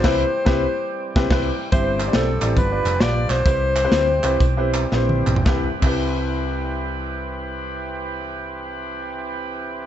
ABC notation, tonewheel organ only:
X:1
M:4/4
L:1/8
Q:"Swing" 1/4=121
K:C
V:1 name="Tonewheel organ"
G8 | G4 G4- | G8 | [E,CGB]8- |
[E,CGB]8 |]
V:2 name="Tonewheel organ" clef=bass
[E,G,C]8 | [E,G,C]4 [F,B,D]4 | [E,G,C]8 | z8 |
z8 |]